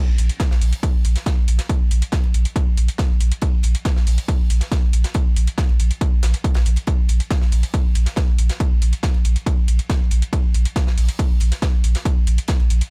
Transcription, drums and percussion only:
0.18 open hi-hat loud
0.18 ride medium
0.29 closed hi-hat medium
0.40 kick loud
0.40 snare loud
0.40 closed hi-hat medium
0.40 ride medium
0.51 snare medium
0.62 open hi-hat loud
0.62 open hi-hat medium
0.73 closed hi-hat medium
0.83 kick loud
0.83 closed hi-hat medium
0.83 ride medium
1.05 open hi-hat loud
1.05 ride medium
1.16 snare soft
1.16 closed hi-hat medium
1.26 kick loud
1.26 snare loud
1.26 closed hi-hat medium
1.26 ride medium
1.48 open hi-hat loud
1.48 ride medium
1.59 snare medium
1.59 closed hi-hat medium
1.69 kick loud
1.69 closed hi-hat medium
1.69 ride medium
1.91 open hi-hat loud
1.91 ride medium
2.02 closed hi-hat medium
2.02 ride soft
2.12 kick loud
2.12 snare loud
2.12 closed hi-hat medium
2.12 ride medium
2.24 ride soft
2.34 open hi-hat loud
2.34 ride medium
2.45 closed hi-hat medium
2.56 kick loud
2.56 closed hi-hat medium
2.56 ride medium
2.77 open hi-hat loud
2.77 ride medium
2.88 closed hi-hat medium
2.98 kick loud
2.98 snare loud
2.98 closed hi-hat medium
2.98 ride medium
3.20 open hi-hat loud
3.20 ride medium
3.32 closed hi-hat medium
3.42 kick loud
3.42 closed hi-hat medium
3.42 ride medium
3.63 open hi-hat loud
3.63 ride medium
3.75 closed hi-hat medium
3.85 kick loud
3.85 snare loud
3.85 closed hi-hat medium
3.85 ride medium
3.96 snare soft
4.07 open hi-hat loud
4.07 open hi-hat medium
4.18 closed hi-hat medium
4.28 kick loud
4.28 closed hi-hat medium
4.28 ride medium
4.50 open hi-hat loud
4.50 ride medium
4.61 snare soft
4.61 closed hi-hat medium
4.72 kick loud
4.72 snare loud
4.72 closed hi-hat medium
4.72 ride medium
4.93 open hi-hat loud
4.93 ride medium
5.04 snare medium
5.04 closed hi-hat medium
5.14 kick loud
5.14 closed hi-hat medium
5.14 ride medium
5.36 open hi-hat loud
5.36 ride medium
5.47 closed hi-hat medium
5.47 ride soft
5.58 kick loud
5.58 snare loud
5.58 closed hi-hat medium
5.58 ride medium
5.69 ride soft
5.80 open hi-hat loud
5.80 ride medium
5.91 closed hi-hat medium
6.01 kick loud
6.01 closed hi-hat medium
6.01 ride medium
6.23 snare loud
6.23 open hi-hat loud
6.23 ride medium
6.33 closed hi-hat medium
6.33 ride soft
6.44 kick loud
6.44 closed hi-hat medium
6.44 ride medium
6.54 snare loud
6.54 ride medium
6.65 open hi-hat loud
6.65 ride soft
6.76 closed hi-hat medium
6.76 ride medium
6.87 kick loud
6.87 closed hi-hat medium
6.87 ride medium
7.09 open hi-hat loud
7.09 ride medium
7.20 closed hi-hat medium
7.30 kick loud
7.30 snare loud
7.30 closed hi-hat medium
7.30 ride medium
7.42 snare soft
7.52 open hi-hat medium
7.52 open hi-hat loud
7.63 closed hi-hat medium
7.74 kick loud
7.74 closed hi-hat medium
7.74 ride medium
7.95 open hi-hat loud
7.95 ride medium
8.06 snare soft
8.06 closed hi-hat medium
8.16 kick loud
8.16 snare loud
8.16 closed hi-hat medium
8.16 ride medium
8.38 open hi-hat loud
8.38 ride medium
8.49 snare medium
8.49 closed hi-hat medium
8.60 kick loud
8.60 closed hi-hat medium
8.60 ride medium
8.82 open hi-hat loud
8.82 ride medium
8.93 closed hi-hat medium
8.93 ride soft
9.03 kick loud
9.03 snare loud
9.03 closed hi-hat medium
9.03 ride medium
9.14 ride soft
9.25 open hi-hat loud
9.25 ride medium
9.36 closed hi-hat medium
9.46 kick loud
9.46 closed hi-hat medium
9.46 ride medium
9.68 open hi-hat loud
9.68 ride medium
9.79 closed hi-hat medium
9.90 kick loud
9.90 snare loud
9.90 closed hi-hat medium
9.90 ride medium
10.11 open hi-hat loud
10.11 ride medium
10.22 closed hi-hat medium
10.33 kick loud
10.33 closed hi-hat medium
10.33 ride loud
10.54 open hi-hat loud
10.54 ride medium
10.65 closed hi-hat medium
10.76 kick loud
10.76 snare loud
10.76 closed hi-hat medium
10.76 ride medium
10.87 snare medium
10.98 open hi-hat loud
10.98 open hi-hat medium
11.09 closed hi-hat medium
11.19 kick loud
11.19 closed hi-hat medium
11.19 ride medium
11.40 open hi-hat loud
11.40 ride medium
11.52 snare soft
11.52 closed hi-hat medium
11.62 kick loud
11.62 snare loud
11.62 closed hi-hat medium
11.62 ride medium
11.84 open hi-hat loud
11.84 ride medium
11.95 snare medium
11.95 closed hi-hat medium
12.05 kick loud
12.05 closed hi-hat medium
12.05 ride medium
12.27 open hi-hat loud
12.27 ride medium
12.38 closed hi-hat medium
12.38 ride soft
12.48 kick loud
12.48 snare loud
12.48 closed hi-hat medium
12.48 ride medium
12.60 ride soft
12.70 open hi-hat loud
12.70 ride medium
12.81 closed hi-hat medium

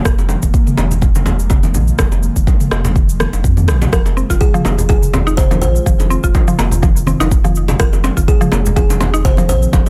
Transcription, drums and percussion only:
0.05 kick loud
0.05 cross-stick medium
0.05 cabasa medium
0.19 high bongo medium
0.19 cabasa soft
0.29 low bongo medium
0.29 cabasa soft
0.42 kick medium
0.42 high conga medium
0.42 cabasa medium
0.54 kick loud
0.54 cabasa soft
0.67 mid tom medium
0.67 cabasa soft
0.77 high bongo loud
0.77 low bongo medium
0.77 cabasa soft
0.91 low conga medium
0.91 cabasa medium
1.02 kick loud
1.02 high conga medium
1.02 low conga loud
1.02 cabasa soft
1.15 mid tom medium
1.15 low bongo medium
1.15 cabasa medium
1.26 high bongo loud
1.26 high conga medium
1.26 low conga medium
1.26 cabasa soft
1.39 cabasa soft
1.50 kick loud
1.50 mid tom medium
1.50 high bongo medium
1.50 cabasa medium
1.63 low bongo medium
1.63 high conga medium
1.63 cabasa soft
1.74 low conga loud
1.74 cabasa medium
1.88 cabasa soft
1.98 kick loud
1.98 cross-stick medium
1.98 low bongo medium
1.98 high conga soft
1.98 cabasa medium
2.12 high bongo medium
2.12 cabasa soft
2.23 cabasa soft
2.36 kick medium
2.36 high conga medium
2.36 cabasa medium
2.47 kick loud
2.47 low bongo medium
2.47 cabasa soft
2.60 mid tom medium
2.60 cabasa soft
2.71 cross-stick medium
2.71 high bongo loud
2.71 cabasa soft
2.85 low bongo medium
2.85 low conga medium
2.85 cabasa medium
2.96 kick loud
2.96 high conga medium
2.96 cabasa soft
3.09 cabasa medium
3.20 cross-stick medium
3.20 high conga medium
3.20 cabasa soft
3.33 low bongo medium
3.33 cabasa soft
3.44 kick loud
3.44 cabasa medium
3.57 high conga medium
3.57 cabasa soft
3.68 cross-stick medium
3.68 low bongo medium
3.68 cabasa medium
3.82 mid tom medium
3.82 high bongo loud
3.82 low conga medium
3.82 cabasa soft
3.93 kick loud
3.93 cross-stick medium
3.93 cabasa medium
4.06 high bongo medium
4.06 cabasa soft
4.17 cabasa medium
4.30 kick medium
4.30 low bongo medium
4.30 high conga medium
4.30 cabasa medium
4.41 kick loud
4.41 cabasa soft
4.55 mid tom medium
4.55 cabasa soft
4.65 high bongo loud
4.65 low bongo medium
4.65 cabasa soft
4.78 low conga medium
4.78 cabasa medium
4.90 kick loud
4.90 high conga medium
4.90 low conga loud
4.90 cabasa soft
5.03 mid tom medium
5.03 cabasa medium
5.13 high bongo loud
5.13 low bongo medium
5.13 high conga medium
5.13 low conga loud
5.13 cabasa soft
5.27 cabasa medium
5.38 kick loud
5.38 mid tom medium
5.38 high bongo loud
5.38 cabasa medium
5.51 low bongo medium
5.51 high conga loud
5.51 cabasa medium
5.61 low conga loud
5.61 cabasa medium
5.76 cabasa medium
5.86 kick loud
5.86 high conga medium
5.86 cabasa medium
6.00 high bongo medium
6.00 low bongo medium
6.00 cabasa medium
6.11 cabasa medium
6.24 kick medium
6.24 high conga medium
6.24 cabasa medium
6.35 kick loud
6.35 low bongo medium
6.35 cabasa medium
6.48 mid tom medium
6.48 cabasa medium
6.59 high bongo loud
6.59 cabasa medium
6.71 low conga medium
6.71 cabasa medium
6.82 kick loud
6.82 low bongo medium
6.82 high conga medium
6.82 cabasa medium
6.96 cabasa medium
7.07 high conga medium
7.07 cabasa medium
7.21 low bongo medium
7.21 cabasa medium
7.31 kick loud
7.31 cabasa loud
7.45 high conga loud
7.45 cabasa medium
7.55 cabasa medium
7.68 mid tom medium
7.68 high bongo medium
7.68 low bongo medium
7.68 low conga medium
7.68 cabasa medium
7.80 kick loud
7.80 cross-stick medium
7.80 cabasa medium
7.93 high bongo medium
7.93 cabasa medium
8.04 low bongo medium
8.04 cabasa medium
8.17 kick medium
8.17 high conga medium
8.17 cabasa medium
8.28 kick loud
8.28 cabasa medium
8.41 mid tom medium
8.41 cabasa medium
8.52 high bongo loud
8.52 low bongo medium
8.52 cabasa medium
8.66 low conga loud
8.66 cabasa medium
8.77 kick loud
8.77 high conga medium
8.77 low conga loud
8.77 cabasa medium
8.90 mid tom medium
8.90 low bongo medium
8.90 cabasa loud
9.01 high bongo loud
9.01 high conga medium
9.01 low conga loud
9.01 cabasa medium
9.14 cabasa medium
9.25 kick loud
9.25 mid tom medium
9.25 high bongo medium
9.25 cabasa medium
9.37 low bongo medium
9.37 high conga medium
9.37 cabasa medium
9.49 low conga loud
9.49 cabasa medium
9.62 cabasa medium
9.73 kick loud
9.73 low bongo loud
9.73 high conga medium
9.73 cabasa medium

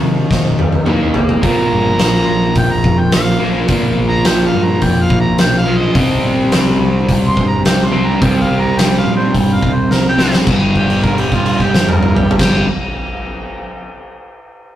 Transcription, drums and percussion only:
0.31 kick medium
0.31 snare medium
0.59 high tom medium
0.72 high tom medium
0.86 mid tom medium
1.14 floor tom medium
1.29 floor tom medium
1.43 kick loud
1.43 open hi-hat soft
1.99 snare loud
1.99 open hi-hat soft
2.55 kick medium
2.55 open hi-hat soft
2.84 kick medium
3.12 snare loud
3.12 open hi-hat medium
3.68 kick medium
3.68 open hi-hat medium
4.25 snare loud
4.25 open hi-hat medium
4.82 kick medium
4.82 open hi-hat medium
5.10 kick medium
5.38 snare loud
5.38 open hi-hat medium
5.95 kick medium
5.95 open hi-hat soft
6.52 snare loud
6.52 open hi-hat medium
7.09 kick medium
7.09 open hi-hat soft
7.37 kick medium
7.65 snare loud
7.65 open hi-hat medium
8.22 kick loud
8.22 open hi-hat medium
8.79 snare loud
8.79 open hi-hat medium
9.35 kick medium
9.35 open hi-hat medium
9.63 kick medium
9.91 snare medium
10.19 snare medium
10.33 snare medium
10.47 kick loud
10.47 crash medium
10.75 kick medium
10.75 crash soft
10.90 crash soft
11.04 kick medium
11.04 crash soft
11.18 crash soft
11.32 kick medium
11.32 crash medium
11.46 crash medium
11.60 kick medium
11.60 crash soft
11.74 snare loud
11.89 high tom loud
12.03 mid tom medium
12.17 mid tom loud
12.31 floor tom loud
12.39 kick loud
12.39 snare medium
12.39 crash loud

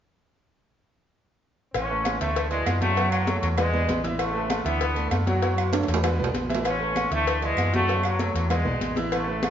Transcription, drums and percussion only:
1.74 cowbell loud
1.74 high conga soft
1.74 low agogo loud
1.74 claves medium
1.91 high conga soft
2.05 cowbell medium
2.05 high conga medium
2.05 low agogo loud
2.05 claves medium
2.21 cowbell medium
2.21 high conga soft
2.36 cowbell loud
2.36 high conga soft
2.36 low agogo medium
2.51 high conga soft
2.51 low agogo medium
2.66 cowbell medium
2.66 high conga medium
2.66 low timbale medium
2.66 low agogo loud
2.66 claves medium
2.82 cowbell medium
2.82 high conga medium
2.97 cowbell loud
2.97 high conga soft
2.97 low agogo medium
3.12 high conga soft
3.12 low agogo loud
3.12 claves medium
3.27 cowbell medium
3.27 high conga loud
3.43 cowbell medium
3.43 low agogo medium
3.58 cowbell loud
3.58 high conga soft
3.58 low conga medium
3.58 low agogo loud
3.58 claves medium
3.74 high conga soft
3.74 low conga medium
3.89 cowbell medium
3.89 high conga medium
3.89 low timbale medium
3.89 low agogo medium
4.04 cowbell medium
4.04 high conga medium
4.19 cowbell loud
4.19 high conga soft
4.19 low agogo loud
4.19 claves medium
4.36 high conga soft
4.50 cowbell medium
4.50 high conga loud
4.50 low agogo loud
4.50 claves medium
4.66 cowbell medium
4.66 high conga soft
4.81 cowbell loud
4.81 high conga soft
4.81 low agogo medium
4.96 high conga soft
4.96 low agogo medium
5.11 cowbell medium
5.11 high conga medium
5.11 low agogo loud
5.11 claves medium
5.27 cowbell medium
5.27 high conga loud
5.42 cowbell loud
5.42 high conga soft
5.42 low agogo medium
5.58 low agogo loud
5.58 claves medium
5.73 cowbell medium
5.73 high conga medium
5.73 high timbale loud
5.83 high timbale medium
5.88 cowbell medium
5.88 low agogo medium
5.94 low timbale loud
6.04 cowbell loud
6.04 high conga soft
6.04 low conga medium
6.04 low timbale medium
6.04 low agogo loud
6.04 claves medium
6.20 high conga soft
6.20 low conga medium
6.24 low timbale loud
6.34 cowbell medium
6.34 high conga medium
6.34 low agogo medium
6.50 cowbell medium
6.50 high conga medium
6.55 low timbale loud
6.65 cowbell loud
6.65 high conga soft
6.65 low agogo loud
6.65 claves medium
6.80 high conga soft
6.96 cowbell medium
6.96 high conga loud
6.96 low agogo loud
6.96 claves medium
7.11 cowbell medium
7.11 high conga soft
7.27 cowbell loud
7.27 high conga soft
7.27 low agogo medium
7.42 high conga soft
7.42 low agogo medium
7.57 cowbell medium
7.57 high conga medium
7.57 low agogo loud
7.57 claves medium
7.74 cowbell medium
7.74 high conga loud
7.89 cowbell loud
7.89 high conga soft
7.89 low agogo medium
8.03 high conga soft
8.03 low agogo loud
8.03 claves medium
8.19 cowbell medium
8.19 high conga loud
8.36 cowbell medium
8.36 low agogo medium
8.50 cowbell loud
8.50 high conga soft
8.50 low conga medium
8.50 low agogo loud
8.50 claves medium
8.65 high conga soft
8.65 low conga medium
8.81 cowbell medium
8.81 high conga medium
8.81 low agogo medium
8.96 cowbell medium
8.96 high conga medium
9.12 cowbell loud
9.12 high conga soft
9.12 low agogo loud
9.12 claves medium
9.28 high conga soft
9.43 cowbell medium
9.43 high conga loud
9.43 low agogo loud
9.43 claves medium

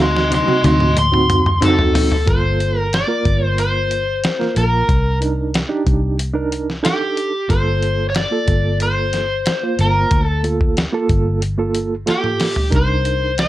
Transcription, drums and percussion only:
0.00 snare medium
0.17 snare medium
0.32 closed hi-hat medium
0.32 high tom medium
0.48 high tom medium
0.64 closed hi-hat medium
0.64 high tom medium
0.80 mid tom medium
0.97 closed hi-hat loud
0.97 mid tom loud
1.14 mid tom medium
1.30 closed hi-hat medium
1.30 mid tom loud
1.46 mid tom medium
1.62 closed hi-hat medium
1.62 mid tom medium
1.79 floor tom medium
1.95 floor tom loud
1.95 open hi-hat medium
2.12 floor tom medium
2.27 kick loud
2.27 closed hi-hat medium
2.60 closed hi-hat medium
2.93 snare medium
2.93 closed hi-hat medium
3.25 kick medium
3.25 closed hi-hat medium
3.58 closed hi-hat medium
3.91 closed hi-hat medium
4.24 snare loud
4.24 closed hi-hat medium
4.41 snare soft
4.56 closed hi-hat medium
4.89 kick loud
4.89 closed hi-hat medium
5.22 closed hi-hat medium
5.54 snare loud
5.54 closed hi-hat medium
5.87 kick medium
5.87 closed hi-hat medium
6.19 closed hi-hat medium
6.52 closed hi-hat medium
6.70 snare soft
6.85 snare medium
6.85 closed hi-hat medium
7.17 closed hi-hat medium
7.50 kick medium
7.50 closed hi-hat medium
7.83 closed hi-hat medium
8.15 snare medium
8.15 closed hi-hat medium
8.48 kick medium
8.48 closed hi-hat medium
8.80 closed hi-hat medium
9.13 snare soft
9.13 closed hi-hat medium
9.46 snare loud
9.46 closed hi-hat medium
9.79 closed hi-hat medium
10.11 kick loud
10.11 closed hi-hat medium
10.44 closed hi-hat soft
10.61 kick medium
10.77 snare medium
10.77 closed hi-hat medium
11.09 kick medium
11.09 closed hi-hat soft
11.42 closed hi-hat medium
11.75 closed hi-hat medium
12.07 snare medium
12.07 closed hi-hat medium
12.24 mid tom medium
12.40 snare medium
12.40 open hi-hat medium
12.56 floor tom medium
12.72 kick loud
12.72 closed hi-hat medium
13.05 closed hi-hat medium
13.38 snare medium
13.38 closed hi-hat medium

